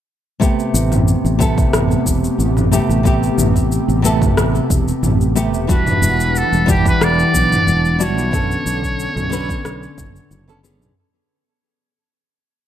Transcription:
0.40 C3 A3 B3 G4, kick, shaker
0.59 shaker
0.74 A1, shaker
0.92 mid tom, shaker
1.08 shaker
1.25 A1, shaker
1.39 C3 A3 B3 A4, kick, shaker
1.58 kick, shaker
1.73 A1, cross-stick, mid tom, shaker
1.91 shaker
2.06 E1, kick, shaker
2.24 shaker
2.39 A1, shaker
2.57 mid tom, shaker
2.72 C3 A3 B3 G4, shaker
2.89 A1, shaker
3.03 C3 A3 B3 G4, kick, shaker
3.23 shaker
3.38 A1, mid tom, shaker
3.56 kick, shaker
3.72 shaker
3.88 A1, shaker
4.02 C3 A3 B3 A4, shaker
4.22 kick, mid tom, shaker
4.37 A1, cross-stick, shaker
4.55 shaker
4.70 E1, kick, shaker
4.88 shaker
5.03 A1, mid tom, shaker
5.21 shaker
5.35 C3 A3 B3 G4, shaker
5.53 E1, shaker
5.67 E3 G3 D4 F#4 B4 F#5, kick, shaker
5.87 mid tom, shaker
6.02 E1, shaker
6.20 shaker
6.36 A4, shaker
6.53 E1, shaker
6.66 E3 G3 D4 G4, kick, mid tom, shaker
6.70 G4
6.86 B4, kick, shaker
7.01 E1 D5, cross-stick, shaker
7.19 shaker
7.34 B1, kick, shaker
7.52 mid tom, shaker
7.67 E1, shaker
7.85 shaker
7.99 E3 G3 D4 F#4 C#5, shaker
8.17 B1, shaker
8.31 D3 B3 C#4 A4, kick, mid tom, shaker
8.51 shaker
8.66 B1, shaker
8.83 kick, shaker
9.00 shaker
9.16 B1, mid tom, shaker
9.30 D3 B3 C#4 B4, shaker
9.49 kick, shaker
9.65 B1, cross-stick, shaker
9.83 shaker
9.98 F#1, kick, mid tom, shaker
10.16 shaker
10.31 F#1, shaker
10.48 D3 B3 C#4 A4, shaker
10.63 D3 B3 C#4 G#4, shaker
10.81 B1, mid tom, shaker

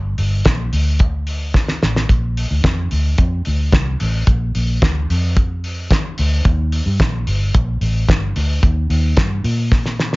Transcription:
Already playing: G1
0.18 G1, open hi-hat
0.45 A#1, kick, snare, closed hi-hat
0.73 D2, open hi-hat
0.99 kick, closed hi-hat
1.27 open hi-hat
1.54 kick, snare
1.68 snare
1.83 A1, snare
1.96 snare
2.09 A#1, kick, closed hi-hat
2.37 open hi-hat
2.51 D2
2.64 F2, kick, snare, closed hi-hat
2.91 D2, open hi-hat
3.18 F2, kick, closed hi-hat
3.45 D2, open hi-hat
3.72 C2, kick, snare, closed hi-hat
4.00 A1, open hi-hat
4.27 A#1, kick, closed hi-hat
4.55 A#1, open hi-hat
4.82 D2, kick, snare, closed hi-hat
5.10 F2, open hi-hat
5.37 kick, closed hi-hat
5.64 open hi-hat
5.91 kick, snare, closed hi-hat
6.18 D2, open hi-hat
6.45 D#2, kick, closed hi-hat
6.72 open hi-hat
6.86 G2
7.00 A#1, kick, snare, closed hi-hat
7.27 G1, open hi-hat
7.54 A#1, kick, closed hi-hat
7.81 A1, open hi-hat
8.09 kick, snare, closed hi-hat
8.36 D2, open hi-hat
8.63 D#2, kick, closed hi-hat
8.90 D#2, open hi-hat
9.17 G2, kick, snare, closed hi-hat
9.44 A#2, open hi-hat
9.72 kick, snare
9.86 snare
9.99 snare
10.13 snare

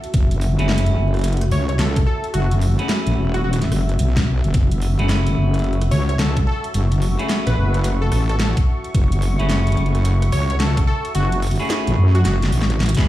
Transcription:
Already playing: A3 C#4 E4 F#4 G#4 E5
0.04 closed hi-hat
0.14 F#1, kick, closed hi-hat
0.31 closed hi-hat
0.41 open hi-hat
0.59 F#1 A3 C#4 E4 G#4, closed hi-hat
0.69 snare
0.78 closed hi-hat
0.86 closed hi-hat
0.97 F#1
1.14 cross-stick, closed hi-hat
1.16 closed hi-hat
1.19 closed hi-hat
1.21 closed hi-hat
1.24 closed hi-hat
1.28 closed hi-hat
1.33 closed hi-hat
1.37 closed hi-hat
1.41 cross-stick, closed hi-hat
1.43 cross-stick
1.46 cross-stick
1.48 cross-stick
1.50 C#2 C#5, cross-stick, open hi-hat
1.69 C#5, closed hi-hat
1.79 A4, snare, closed hi-hat
1.96 kick, closed hi-hat
2.07 A4
2.24 closed hi-hat
2.34 F#1 F#4, closed hi-hat
2.51 closed hi-hat
2.61 open hi-hat
2.79 A3 C#4 E4 G#4, closed hi-hat
2.89 snare, closed hi-hat
3.06 A1, closed hi-hat
3.17 E1
3.34 F#4, cross-stick, closed hi-hat
3.44 F#4
3.53 closed hi-hat
3.62 snare, closed hi-hat
3.71 F#1, cross-stick, open hi-hat
3.89 closed hi-hat
3.99 B1, closed hi-hat
4.17 kick, snare, closed hi-hat
4.44 F#1, closed hi-hat
4.54 F#1 C#6, kick, closed hi-hat
4.71 closed hi-hat
4.82 open hi-hat
4.99 F#1 A3 C#4 E4 G#4, closed hi-hat
5.09 snare, closed hi-hat
5.27 closed hi-hat
5.37 F#1
5.54 cross-stick, closed hi-hat
5.59 closed hi-hat
5.64 closed hi-hat
5.73 closed hi-hat
5.82 cross-stick, closed hi-hat
5.91 C#2 C#5, open hi-hat
6.09 C#5, closed hi-hat
6.19 A4, snare, closed hi-hat
6.37 kick, closed hi-hat
6.47 A4
6.64 closed hi-hat
6.74 F#1, closed hi-hat
6.92 closed hi-hat
7.02 open hi-hat
7.19 A3 C#4 E4 G#4, closed hi-hat
7.29 snare, closed hi-hat
7.47 A1 B4, closed hi-hat
7.57 F#1
7.74 cross-stick, closed hi-hat
7.84 closed hi-hat
8.02 A4
8.12 A1 A4, cross-stick, open hi-hat
8.29 A4, closed hi-hat
8.39 A4, snare, closed hi-hat
8.57 kick, closed hi-hat
8.84 closed hi-hat
8.95 F#1, kick, closed hi-hat
9.12 closed hi-hat
9.22 open hi-hat
9.39 F#1 A3 C#4 E4 G#4, closed hi-hat
9.50 snare, closed hi-hat
9.67 closed hi-hat
9.72 closed hi-hat
9.77 F#1, closed hi-hat
9.86 closed hi-hat
9.95 cross-stick, closed hi-hat
10.05 closed hi-hat
10.22 cross-stick, closed hi-hat
10.32 C#2 C#5, open hi-hat
10.50 C#5, closed hi-hat
10.60 A4, snare, closed hi-hat
10.77 kick, closed hi-hat
10.87 A4
11.05 closed hi-hat
11.15 F#1 F#4, closed hi-hat
11.32 closed hi-hat
11.42 open hi-hat
11.47 open hi-hat
11.51 closed hi-hat, open hi-hat
11.56 E4, open hi-hat
11.60 A3 C#4 G#4, open hi-hat
11.62 open hi-hat
11.65 open hi-hat
11.67 snare, closed hi-hat, open hi-hat
11.87 A1, closed hi-hat
11.98 F#2
12.15 F#4, cross-stick, closed hi-hat
12.25 F#1 F#4, snare, closed hi-hat
12.42 snare, closed hi-hat
12.52 A1, open hi-hat
12.62 snare
12.70 closed hi-hat
12.80 snare, closed hi-hat
12.83 closed hi-hat
12.86 closed hi-hat
12.89 closed hi-hat
12.95 F#1 A3 C#4 E4 G#4, kick, snare, closed hi-hat

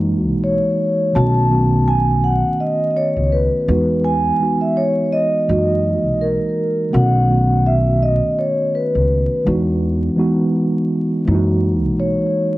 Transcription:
Already playing: F#2 E3 G#3 A#3 D#4 F#4
0.27 B1
0.43 C#5
1.13 B1 D#3 A3 B3 C#4 F#4 A5
1.49 D#3 A3 B3 C#4 F#4
1.88 G#5
2.24 F#5
2.60 D#5
2.91 D#5
2.97 C#5
3.17 C#2
3.33 B4
3.68 E2 E3 G#3 B3 D#4 F#4
4.04 G#5
4.40 E3 G#3 B3 D#4 F#4
4.61 E5
4.77 C#5
5.13 D#5
5.48 F#2 E3 G#3 A#3 D#4 F#4
6.06 B1
6.21 A#4
6.90 B1 D#3 A3 B3 C#4 F#4 F#5
7.28 D#3 A3 B3 C#4 F#4
7.66 E5
8.02 D#5
8.39 C#5
8.75 B4
8.95 C#2
9.44 E2 E3 G#3 B3 D#4 F#4
10.16 E3 G#3 B3 D#4 F#4
11.25 F#2 E3 G#3 A#3 D#4 E4
11.35 F#4
11.84 B1
12.00 C#5

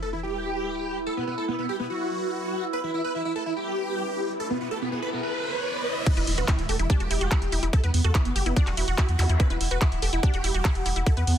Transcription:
Already playing: E4 B4 B5, sub drop
0.02 A4
0.13 E4
0.23 G4
1.06 A4
1.17 B3
1.27 B3
1.38 A4
1.48 B3
1.59 B3
1.69 G4
1.79 B3
1.90 F#4
2.73 B4, riser
2.84 E4
2.94 E4
3.04 B4
3.15 E4
3.25 E4
3.36 A4
3.46 E4
3.56 G4
4.40 A4
4.50 B3
4.61 B3
4.71 A4
4.81 B3
4.92 B3
5.02 B4
5.13 B3
5.23 B4
6.06 E4 B4 F#5, kick, closed hi-hat, crash, impact
6.17 E1 E4 B4, closed hi-hat
6.27 E1 E4, open hi-hat
6.38 E1 F#4 B4, closed hi-hat
6.48 E4, kick, clap, closed hi-hat
6.59 D1 E4, closed hi-hat
6.69 E1 G4 A4, open hi-hat
6.79 E1 E4, closed hi-hat
6.90 D4 G4, kick, closed hi-hat
7.00 E1 F#4, closed hi-hat
7.11 E1 E4, open hi-hat
7.21 E1 F#4, closed hi-hat
7.31 E4, kick, clap, closed hi-hat
7.42 E1, closed hi-hat
7.52 E1 E4, open hi-hat
7.63 E1 E4, closed hi-hat
7.73 E4 A4, kick, closed hi-hat
7.84 E2 B3 B4, closed hi-hat
7.94 E2 B3, open hi-hat
8.04 E2 F#4 A4, closed hi-hat
8.15 B3 E4, kick, clap, closed hi-hat
8.25 F#1 B3, closed hi-hat
8.36 F#1 G4, open hi-hat
8.46 F#1 B3 E4, closed hi-hat
8.56 D4 F#4, kick, closed hi-hat
8.67 E1 F#4, clap, closed hi-hat
8.77 E1 E4, open hi-hat
8.88 E1 F#4, closed hi-hat
8.98 E4, kick, clap, closed hi-hat
9.09 E2, closed hi-hat
9.19 E2 E4, open hi-hat, zap
9.29 E2 E4, closed hi-hat
9.40 E4 B4, kick, closed hi-hat
9.50 E1 E4 B4, closed hi-hat
9.61 E1 E4, open hi-hat
9.71 E1 F#4 B4, closed hi-hat
9.81 E4, kick, clap, closed hi-hat
9.92 D1 E4, closed hi-hat
10.02 E1 G4 A4, open hi-hat
10.13 E1 E4, closed hi-hat
10.23 D4 G4, kick, closed hi-hat
10.34 E1 F#4, closed hi-hat
10.44 E1 E4, open hi-hat
10.54 E1 F#4, closed hi-hat
10.65 E4, kick, clap, closed hi-hat
10.75 E1, closed hi-hat
10.86 E1 E4, open hi-hat
10.96 E1 E4, closed hi-hat
11.06 E4 A4, kick, closed hi-hat
11.17 E2 B3 B4, closed hi-hat
11.27 E2 B3, open hi-hat

